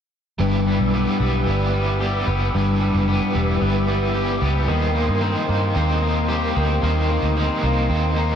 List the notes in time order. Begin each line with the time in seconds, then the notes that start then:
0.39 G1 G2 G3 B3 E4 B4 D5 G5 D6 E6
0.66 G3 E4 B4 D5
0.80 B1
0.93 G3 B3 E4 B4 D5
1.20 B1 G3 B4 D5
1.24 E4
1.46 G1 B3 E4 B4
1.51 D5
1.73 G3 E4 B4 D5
2.00 G3 B3 E4 G4 B4 D5
2.27 F#1 B3 E4 B4 D5
2.54 G1 G2 G3 B3 E4 B4 D5
2.80 G3 E4 B4 D5
2.94 F#1
3.08 G3 B3 E4 B4 D5
3.33 E1 G3 E4 B4 D5
3.60 G1 B3 E4 B4 D5
3.87 G3 E4 B4 D5
4.14 G3 B3 E4 G4 B4 D5
4.40 C#2 B3 E4 B4 D5
4.67 D#2 D#3 G3 A#3 D#4 A#4 C5 C6 D#6
4.94 A#3 D#4 A#4 C5
5.09 G2
5.20 D#3 G3 A#3 C4 D#4 A#4 C5
5.47 G2 A#3 D#4 A#4 C5
5.74 D#2 A#3 C4 D#4 A#4 C5
6.01 A#3 D#4 A#4 C5
6.28 D#3 G3 A#3 D#4 G4 A#4 C5
6.55 D2 A#3 C4 D#4 A#4 C5
6.82 D#2 D#3 G3 A#3 D#4 A#4 C5 A#5
7.09 A#3 D#4 A#4 C5
7.23 D2
7.35 D#3 G3 A#3 C4 D#4 A#4 C5
7.62 C2 A#3 D#4 A#4 C5
7.89 D#2 A#3 C4 D#4 A#4 C5
8.16 A#3 D#4 A#4 C5